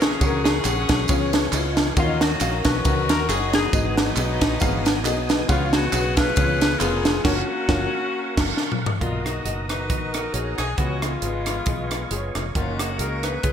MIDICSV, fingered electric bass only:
0, 0, Header, 1, 2, 480
1, 0, Start_track
1, 0, Key_signature, 6, "major"
1, 0, Tempo, 440852
1, 231, Time_signature, 4, 2, 24, 8
1, 14726, End_track
2, 0, Start_track
2, 0, Title_t, "Fingered electric bass"
2, 0, Program_c, 0, 33
2, 0, Note_on_c, 0, 35, 102
2, 158, Note_off_c, 0, 35, 0
2, 231, Note_on_c, 0, 37, 117
2, 639, Note_off_c, 0, 37, 0
2, 706, Note_on_c, 0, 34, 101
2, 935, Note_off_c, 0, 34, 0
2, 975, Note_on_c, 0, 35, 91
2, 1157, Note_off_c, 0, 35, 0
2, 1190, Note_on_c, 0, 37, 105
2, 1597, Note_off_c, 0, 37, 0
2, 1659, Note_on_c, 0, 37, 100
2, 2071, Note_off_c, 0, 37, 0
2, 2143, Note_on_c, 0, 39, 111
2, 2553, Note_off_c, 0, 39, 0
2, 2624, Note_on_c, 0, 34, 94
2, 2853, Note_off_c, 0, 34, 0
2, 2888, Note_on_c, 0, 35, 94
2, 3072, Note_off_c, 0, 35, 0
2, 3106, Note_on_c, 0, 37, 88
2, 3366, Note_off_c, 0, 37, 0
2, 3366, Note_on_c, 0, 39, 95
2, 3550, Note_off_c, 0, 39, 0
2, 3579, Note_on_c, 0, 30, 99
2, 3989, Note_off_c, 0, 30, 0
2, 4063, Note_on_c, 0, 32, 104
2, 4471, Note_off_c, 0, 32, 0
2, 4535, Note_on_c, 0, 35, 97
2, 4766, Note_off_c, 0, 35, 0
2, 4810, Note_on_c, 0, 34, 91
2, 4991, Note_off_c, 0, 34, 0
2, 5027, Note_on_c, 0, 32, 101
2, 5494, Note_off_c, 0, 32, 0
2, 5494, Note_on_c, 0, 35, 101
2, 5904, Note_off_c, 0, 35, 0
2, 5980, Note_on_c, 0, 37, 115
2, 6387, Note_off_c, 0, 37, 0
2, 6453, Note_on_c, 0, 35, 103
2, 6863, Note_off_c, 0, 35, 0
2, 6937, Note_on_c, 0, 37, 115
2, 7344, Note_off_c, 0, 37, 0
2, 7412, Note_on_c, 0, 29, 107
2, 7820, Note_off_c, 0, 29, 0
2, 7892, Note_on_c, 0, 30, 107
2, 8075, Note_off_c, 0, 30, 0
2, 8371, Note_on_c, 0, 30, 105
2, 8554, Note_off_c, 0, 30, 0
2, 9118, Note_on_c, 0, 30, 94
2, 9263, Note_off_c, 0, 30, 0
2, 9816, Note_on_c, 0, 35, 94
2, 10223, Note_off_c, 0, 35, 0
2, 10289, Note_on_c, 0, 30, 81
2, 10779, Note_off_c, 0, 30, 0
2, 10779, Note_on_c, 0, 34, 81
2, 11186, Note_off_c, 0, 34, 0
2, 11255, Note_on_c, 0, 34, 84
2, 11484, Note_off_c, 0, 34, 0
2, 11524, Note_on_c, 0, 35, 73
2, 11705, Note_off_c, 0, 35, 0
2, 11739, Note_on_c, 0, 37, 97
2, 12148, Note_off_c, 0, 37, 0
2, 12217, Note_on_c, 0, 32, 82
2, 12628, Note_off_c, 0, 32, 0
2, 12700, Note_on_c, 0, 35, 77
2, 13111, Note_off_c, 0, 35, 0
2, 13184, Note_on_c, 0, 30, 81
2, 13412, Note_off_c, 0, 30, 0
2, 13449, Note_on_c, 0, 29, 82
2, 13632, Note_off_c, 0, 29, 0
2, 13670, Note_on_c, 0, 30, 103
2, 14144, Note_on_c, 0, 37, 80
2, 14160, Note_off_c, 0, 30, 0
2, 14555, Note_off_c, 0, 37, 0
2, 14633, Note_on_c, 0, 37, 89
2, 14726, Note_off_c, 0, 37, 0
2, 14726, End_track
0, 0, End_of_file